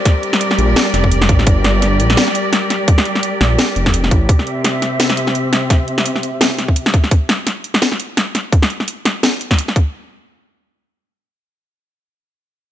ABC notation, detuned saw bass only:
X:1
M:4/4
L:1/8
Q:"Swing 16ths" 1/4=170
K:Cmix
V:1 name="Detuned saw bass" clef=bass
z3 B,,, z F,,,2 A,,, | G,,,3 B,,, z4 | z3 B,,, z F,,,2 A,,, | z8 |
z8 | z8 | z8 | z8 |
z8 |]